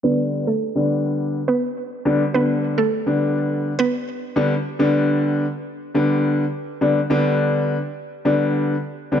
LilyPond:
<<
  \new Staff \with { instrumentName = "Synth pluck" } { \time 4/4 \key g \mixolydian \tempo 4 = 104 <b b'>8 r16 <a a'>8. r4 <b b'>8. r8. | <b b'>8 r16 <a a'>8. r4 <b b'>8. r8. | r1 | r1 | }
  \new Staff \with { instrumentName = "Grand piano" } { \time 4/4 \key g \mixolydian <d g b d'>8. r8 <d g b d'>4 r4 r16 <d g b d'>16 r16 | <d g b d'>8. r8 <d g b d'>4 r4 r16 <d g b d'>16 r16 | r16 <d g b d'>4 r4 <d g b d'>8. r8. <d g b d'>16 | r16 <d g b d'>4 r4 <d g b d'>8. r8. <d g b d'>16 | }
>>